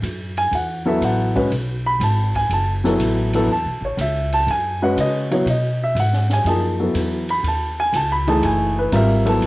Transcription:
0.02 0.51 F#2 medium
0.02 hi-hat pedal medium
0.02 ride medium
0.37 0.52 G#5 medium
0.37 ride soft
0.51 1.00 E2 medium
0.51 0.87 F#5 medium
0.51 ride medium
0.85 1.32 F#3 medium
0.85 1.32 B3 medium
0.85 1.32 E4 medium
0.85 1.33 A4 medium
0.85 1.02 E5 medium
1.01 1.49 A1 medium
1.01 1.36 F#5 medium
1.01 hi-hat pedal medium
1.01 ride medium
1.35 1.50 G#3 medium
1.35 1.50 C#4 medium
1.35 1.50 F#4 medium
1.35 1.50 B4 medium
1.35 kick medium
1.35 ride soft
1.50 1.99 B1 medium
1.50 ride soft
1.86 2.01 B5 loud
2.00 2.48 G#1 medium
2.00 2.35 A5 medium
2.00 hi-hat pedal soft
2.00 ride medium
2.35 2.50 G#5 medium
2.35 kick soft
2.35 ride soft
2.49 2.97 F#1 medium
2.49 2.73 A5 medium
2.49 ride medium
2.84 3.30 F#3 medium
2.84 3.30 B3 medium
2.84 3.31 E4 medium
2.84 3.31 A4 medium
2.84 snare medium
2.98 3.47 A1 medium
2.98 hi-hat pedal medium
2.98 ride medium
3.33 3.48 F#3 medium
3.33 3.48 B3 medium
3.33 3.48 E4 medium
3.33 3.48 A4 medium
3.33 ride medium
3.48 3.66 E2 medium
3.48 3.84 A5 medium
3.65 3.80 B1 medium
3.81 3.97 A1 medium
3.81 3.99 C#5 medium
3.97 4.46 C#2 medium
3.97 4.33 E5 medium
3.97 hi-hat pedal medium
3.97 ride medium
4.32 4.48 A5 loud
4.32 ride soft
4.47 4.95 F#2 medium
4.47 4.82 G#5 medium
4.47 ride medium
4.82 5.28 G#3 medium
4.82 5.28 C#4 medium
4.82 5.28 F#4 medium
4.82 5.28 B4 medium
4.82 4.98 F#5 medium
4.97 5.45 C#3 medium
4.97 5.32 D#5 medium
4.97 hi-hat pedal medium
4.97 ride medium
5.31 5.45 F#3 medium
5.31 5.45 B3 medium
5.31 5.46 E4 medium
5.31 5.45 F#4 medium
5.31 5.47 C#5 medium
5.31 ride soft
5.45 5.94 B2 medium
5.45 ride medium
5.50 5.81 D#5 medium
5.83 5.97 E5 medium
5.95 6.43 G#2 medium
5.95 hi-hat pedal medium
5.95 ride medium
6.00 6.31 F#5 medium
6.13 snare soft
6.29 6.47 G#5 medium
6.29 snare soft
6.29 ride soft
6.44 6.93 F#2 medium
6.44 6.77 F3 medium
6.44 6.76 A#3 medium
6.44 6.77 D#4 soft
6.44 6.77 G#4 medium
6.44 ride medium
6.48 6.93 A5 medium
6.80 7.22 F#3 medium
6.80 7.22 B3 soft
6.80 7.22 E4 soft
6.80 7.22 A4 medium
6.94 7.42 E2 medium
6.94 hi-hat pedal medium
6.94 ride medium
7.29 7.45 B5 medium
7.29 ride soft
7.43 7.91 D#2 medium
7.43 ride medium
7.48 7.79 A5 medium
7.80 7.94 G#5 loud
7.93 8.41 C#2 loud
7.93 8.11 A5 medium
7.93 hi-hat pedal medium
7.93 ride medium
8.12 8.27 B5 medium
8.27 8.89 E3 medium
8.27 8.90 A3 medium
8.27 8.90 D#4 medium
8.27 8.90 G#4 medium
8.27 8.44 A5 medium
8.27 ride soft
8.43 8.91 F#1 medium
8.43 8.77 G#5 medium
8.43 ride medium
8.79 8.93 B4 medium
8.92 9.40 G#1 medium
8.92 9.23 G3 medium
8.92 9.23 C4 medium
8.92 9.23 F4 medium
8.92 9.23 A#4 medium
8.92 9.27 E5 medium
8.92 hi-hat pedal medium
8.92 ride medium
9.25 9.46 F#3 medium
9.25 9.46 B3 medium
9.25 9.46 E4 medium
9.25 9.46 A4 medium
9.25 9.43 A5 medium
9.25 ride soft
9.41 9.46 A1 medium
9.41 ride medium

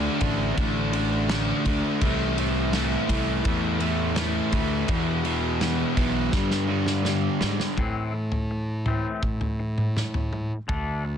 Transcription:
0.00 0.19 D3 medium
0.00 0.20 A3 loud
0.00 0.20 D4 loud
0.20 0.53 A1 medium
0.20 0.55 D3 loud
0.20 0.56 A3 loud
0.20 0.56 D4 loud
0.20 kick medium
0.20 ride medium
0.56 1.52 A1 loud
0.56 0.91 D3 medium
0.56 0.92 A3 medium
0.56 0.92 D4 medium
0.56 kick loud
0.56 ride loud
0.92 1.29 D3 medium
0.92 1.29 A3 medium
0.92 1.30 D4 medium
0.92 ride medium
1.29 1.64 D3 loud
1.29 1.65 A3 medium
1.29 1.66 D4 loud
1.29 snare loud
1.29 ride loud
1.65 1.81 D2 medium
1.65 1.99 D3 medium
1.65 1.99 A3 loud
1.65 2.00 D4 loud
1.65 kick medium
1.65 ride medium
2.01 2.96 C2 loud
2.01 2.36 A2 medium
2.01 2.36 E3 loud
2.01 2.37 A3 loud
2.01 kick loud
2.01 ride loud
2.37 2.71 A2 medium
2.37 2.72 E3 medium
2.37 2.72 A3 medium
2.37 ride medium
2.73 3.06 A2 medium
2.73 3.07 E3 loud
2.73 3.08 A3 loud
2.73 snare loud
2.73 ride loud
3.07 3.40 C2 medium
3.07 3.43 A2 medium
3.07 3.43 E3 loud
3.07 3.44 A3 loud
3.07 kick medium
3.07 ride medium
3.44 4.40 E2 loud
3.44 3.78 A2 medium
3.44 3.79 E3 medium
3.44 3.79 A3 medium
3.44 kick loud
3.44 ride loud
3.79 4.14 A2 medium
3.79 4.15 E3 medium
3.79 4.16 A3 medium
3.79 ride medium
4.15 4.50 A2 medium
4.15 4.51 E3 loud
4.15 4.52 A3 loud
4.15 snare loud
4.15 ride medium
4.52 4.84 D2 medium
4.52 4.86 A2 medium
4.52 4.87 E3 medium
4.52 4.87 A3 medium
4.52 kick medium
4.52 ride medium
4.88 5.23 E2 medium
4.88 5.84 E2 loud
4.88 5.24 B2 loud
4.88 5.24 E3 loud
4.88 kick loud
4.88 ride loud
5.24 5.60 E2 medium
5.24 5.61 B2 medium
5.24 5.62 E3 medium
5.24 ride medium
5.61 5.96 E2 medium
5.61 5.97 B2 loud
5.61 5.97 E3 medium
5.61 snare loud
5.61 ride medium
5.97 6.29 B1 medium
5.97 6.31 E2 medium
5.97 6.31 B2 loud
5.97 6.32 E3 loud
5.97 kick medium
5.97 ride medium
6.32 7.28 G2 loud
6.32 6.69 G2 medium
6.32 6.69 D3 loud
6.32 6.70 G3 loud
6.32 kick loud
6.32 snare medium
6.51 snare medium
6.70 7.04 G2 medium
6.70 7.06 D3 medium
6.70 7.06 G3 medium
6.87 snare medium
7.05 7.41 G2 medium
7.05 7.41 D3 loud
7.05 7.41 G3 loud
7.05 snare medium
7.41 7.76 G2 medium
7.41 7.58 G#2 medium
7.41 7.76 D3 medium
7.41 7.76 G3 medium
7.41 snare loud
7.60 snare medium
7.77 9.05 A2 medium
7.77 8.12 A2 medium
7.77 8.13 E3 medium
7.77 8.13 C4 medium
7.77 kick medium
7.77 floor tom medium
8.14 8.47 A2 medium
8.14 8.47 E3 medium
8.32 floor tom medium
8.51 8.83 A2 medium
8.51 8.84 E3 medium
8.86 9.21 A2 medium
8.86 9.21 E3 medium
8.86 9.21 C4 medium
8.86 floor tom medium
8.86 mid tom medium
9.23 10.51 A2 medium
9.23 9.56 E3 medium
9.23 kick loud
9.41 floor tom medium
9.60 9.92 A2 medium
9.60 9.92 E3 medium
9.78 mid tom medium
9.96 10.29 A2 medium
9.96 10.29 E3 medium
9.96 snare medium
9.96 mid tom medium
10.14 floor tom medium
10.33 10.65 A2 medium
10.33 10.66 E3 medium
10.33 mid tom medium
10.68 11.18 D2 medium
10.68 11.03 D3 medium
10.68 11.03 A3 medium
10.68 11.03 D4 medium
10.68 kick medium
10.68 floor tom medium
11.05 11.18 D3 medium
11.05 11.18 A3 medium

